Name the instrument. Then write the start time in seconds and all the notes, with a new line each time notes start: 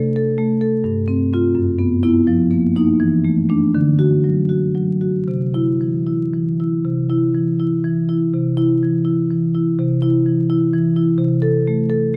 marimba
Already playing: C3 A3
0.16 A4
0.38 A3
0.61 A4
0.84 G2
1.08 C4
1.33 C4 F4
1.55 F#2
1.79 B3
2.03 B3 E4
2.27 F3
2.51 A#3
2.75 A#3 D#4
3.00 E3
3.24 A3
3.49 A3 D4
3.75 D3
3.99 F#4
4.24 F#3
4.49 F#4
4.75 F#3
5.01 F#4
5.28 C3
5.54 E4
5.81 E3
6.07 E4
6.33 E3
6.60 E4
6.85 C3
7.09 E4
7.34 E3
7.60 E4
7.84 E3
8.09 E4
8.33 C3
8.57 E4
8.83 E3
9.05 E4
9.30 E3
9.55 E4
9.79 C3
10.02 E4
10.26 E3
10.50 E4
10.73 E3
10.96 E4
11.18 C3
11.42 A4
11.68 A3
11.90 A4